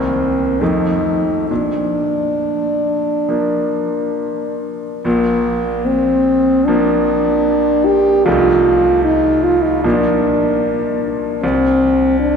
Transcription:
Already playing: grand piano C2 D#3 A#3 C4, french horn C4
0.61 grand piano F2 F3 A3 C4, french horn D#4
1.49 grand piano A#2, french horn D4
3.29 grand piano F3 A#3 D4
5.05 grand piano A#1 A#2, french horn A#3
5.86 french horn C4
6.65 grand piano F3 A#3 D4, french horn D4
7.85 french horn G4
8.25 grand piano C2 C3 F3 A3 D#4, french horn F4
9.04 french horn D#4
9.43 french horn F4
9.64 french horn D#4
9.83 grand piano A#2 F3 A#3 D4, french horn D4
11.43 grand piano C2, french horn C4
12.20 french horn D4

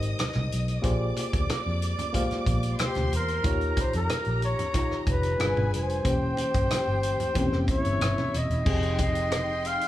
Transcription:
Already playing: fingered electric bass G#1, reed electric piano G#3 D#4 G4 A#4 C5, string section D#5 D#6
0.02 closed hi-hat
0.19 cross-stick, closed hi-hat, high conga
0.36 fingered electric bass C2, high conga
0.52 fingered electric bass B1, closed hi-hat
0.68 closed hi-hat
0.82 fingered electric bass A#1, reed electric piano A#3 F4 G4 G#4 C5 D5, string section D5 D6, kick, closed hi-hat, muted conga
1.17 closed hi-hat, muted conga
1.33 fingered electric bass D2, kick, closed hi-hat
1.49 muted fingered electric bass stroke, cross-stick, closed hi-hat, high conga
1.66 fingered electric bass F2
1.82 closed hi-hat
1.99 closed hi-hat, low conga
2.13 reed electric piano G#3 A#3 F4 G4 C5 F5, kick, closed hi-hat, muted conga, low conga
2.31 muted fingered electric bass stroke, cross-stick, closed hi-hat
2.46 fingered electric bass A#1, kick, closed hi-hat, low conga
2.63 closed hi-hat
2.79 flugelhorn G4, string section C5 C6, cross-stick, closed hi-hat, high conga
2.95 fingered electric bass D2, cross-stick, closed hi-hat, high conga
3.12 fingered electric bass E2, flugelhorn A#4, closed hi-hat
3.28 closed hi-hat
3.43 fingered electric bass D#2, reed electric piano D#3 D#4 F4 G4 C#5, string section G4 A#5, kick, closed hi-hat, muted conga
3.61 closed hi-hat
3.77 kick, closed hi-hat, muted conga
3.81 flugelhorn C5
3.93 fingered electric bass F2, flugelhorn A#4, closed hi-hat
4.09 cross-stick, closed hi-hat, high conga
4.25 fingered electric bass A#1, closed hi-hat
4.42 flugelhorn C#5, closed hi-hat
4.59 closed hi-hat, low conga
4.73 reed electric piano D#3 D#4 F4 G4 C#5, kick, closed hi-hat, muted conga
4.91 muted fingered electric bass stroke, cross-stick
5.07 fingered electric bass F1, flugelhorn B4, kick, closed hi-hat, muted conga
5.23 closed hi-hat
5.38 fingered electric bass G1, reed electric piano G3 D4 F4 G#4 A#4, string section G#4 G#5, cross-stick, closed hi-hat, high conga
5.48 reed electric piano B4
5.57 fingered electric bass G#1, high conga
5.73 fingered electric bass F1, flugelhorn C5, closed hi-hat
5.89 closed hi-hat
6.03 fingered electric bass E1, reed electric piano E3 A#3 C#4 G4 C5, string section G4 G5, kick, closed hi-hat, muted conga
6.37 closed hi-hat, muted conga
6.54 fingered electric bass G1, kick, closed hi-hat
6.71 cross-stick, closed hi-hat, high conga
6.87 fingered electric bass G1
7.03 closed hi-hat
7.20 closed hi-hat, low conga
7.34 fingered electric bass E1, reed electric piano E3 A#3 C4 C#4 G4, kick, closed hi-hat, muted conga, low conga
7.52 fingered electric bass F1, cross-stick
7.68 string section E4 E5, flugelhorn C#5, kick, closed hi-hat, low conga
7.85 fingered electric bass G1, closed hi-hat
8.01 fingered electric bass G1, cross-stick, closed hi-hat, high conga
8.18 cross-stick, high conga
8.33 fingered electric bass E1, flugelhorn D#5, closed hi-hat
8.50 fingered electric bass E1, closed hi-hat
8.65 fingered electric bass F1, reed electric piano F3 C4 D#4 G4 G#4, string section D#4 G5 C6, kick, crash, muted conga
8.83 closed hi-hat
8.99 flugelhorn D#5, kick, closed hi-hat, muted conga
9.15 closed hi-hat
9.32 cross-stick, closed hi-hat, high conga
9.65 flugelhorn F5, closed hi-hat
9.81 closed hi-hat

